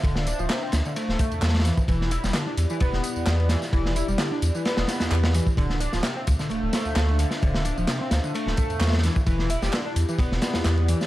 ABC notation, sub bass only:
X:1
M:4/4
L:1/16
Q:"Swing 16ths" 1/4=130
K:Ddor
V:1 name="Sub bass" clef=bass
D,,,3 D,,, z2 D,, z2 D,,, z E,, E,,3 z | E,,,3 E,,, z2 E,, z E,,, E,,, z E,, E,,3 z | E,,,3 E,,, z2 E,, z2 E,,, z E,, E,,3 z | D,,,3 D,,, z2 D,, z D,,, D,,, z D,, D,,3 z |
D,,,3 D,,, z2 D,, z2 D,,, z E,, E,,3 z | E,,,3 E,,, z2 E,, z E,,, E,,, z E,, E,,3 z |]